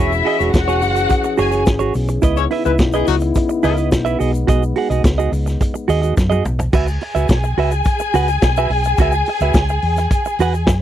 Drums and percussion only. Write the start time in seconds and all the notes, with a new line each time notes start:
0.12 shaker
0.26 open hi-hat
0.40 closed hi-hat, shaker
0.54 kick, snare, closed hi-hat, shaker
0.68 shaker
0.82 open hi-hat, shaker
0.96 closed hi-hat, shaker
1.09 kick, closed hi-hat, shaker
1.24 shaker
1.38 open hi-hat, shaker
1.52 closed hi-hat, shaker
1.66 kick, snare, closed hi-hat, shaker
1.80 shaker
1.94 open hi-hat, shaker
2.08 closed hi-hat, shaker
2.22 kick, closed hi-hat, shaker
2.37 shaker
2.51 open hi-hat
2.65 closed hi-hat, shaker
2.79 kick, snare, closed hi-hat, shaker
2.93 shaker
3.07 open hi-hat, shaker
3.20 closed hi-hat, shaker
3.35 kick, closed hi-hat, shaker
3.49 shaker
3.63 open hi-hat, shaker
3.77 closed hi-hat, shaker
3.92 kick, snare, closed hi-hat, shaker
4.06 shaker
4.21 open hi-hat, shaker
4.34 closed hi-hat, shaker
4.48 kick, closed hi-hat, shaker
4.63 shaker
4.76 open hi-hat
4.90 closed hi-hat, shaker
5.04 kick, snare, closed hi-hat, shaker
5.19 shaker
5.33 open hi-hat, shaker
5.47 snare, closed hi-hat, shaker
5.61 kick, closed hi-hat, shaker
5.75 shaker
5.89 open hi-hat, shaker
6.03 closed hi-hat, shaker
6.17 kick, snare, shaker
6.31 high tom, shaker
6.45 mid tom, shaker
6.59 floor tom, shaker
6.73 kick, crash, shaker
6.87 shaker
7.01 open hi-hat
7.16 closed hi-hat, shaker
7.29 kick, snare, closed hi-hat, shaker
7.43 shaker
7.58 open hi-hat
7.71 closed hi-hat, shaker
7.84 kick, closed hi-hat, shaker
7.99 shaker
8.14 open hi-hat, shaker
8.28 closed hi-hat, shaker
8.42 kick, snare, closed hi-hat, shaker
8.56 shaker
8.70 open hi-hat
8.84 closed hi-hat, shaker
8.98 kick, closed hi-hat, shaker
9.12 shaker
9.26 open hi-hat
9.40 closed hi-hat, shaker
9.54 kick, snare, closed hi-hat, shaker
9.69 shaker
9.82 open hi-hat
9.96 snare, closed hi-hat, shaker
10.11 kick, closed hi-hat, shaker
10.25 shaker
10.39 open hi-hat, shaker
10.53 closed hi-hat, shaker
10.67 kick, snare, closed hi-hat, shaker